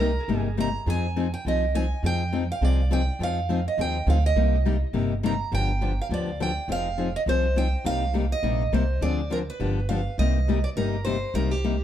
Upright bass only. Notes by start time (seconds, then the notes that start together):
Already playing: C2
0.28 G1
0.86 F2
1.45 C2
2.03 F2
2.61 C2
3.19 F2
3.78 D#2
4.06 D2
4.35 C2
4.93 G1
5.52 G1
6.09 D2
6.68 F1
7.26 C2
7.84 C2
8.43 A#1
8.72 C2
9.01 D2
9.60 G1
10.18 C2
10.76 G1
11.34 C2